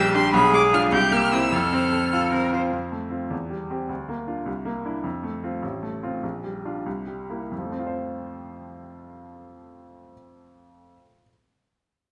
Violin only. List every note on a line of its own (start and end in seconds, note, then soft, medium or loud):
0.00 0.14 E6 loud
0.15 0.33 C6 loud
0.34 0.53 B5 loud
0.54 0.62 D6 loud
0.74 0.82 F6 loud
0.93 1.13 G6 loud
1.12 1.33 F6 loud
1.31 1.54 E6 loud
1.53 2.53 F6 loud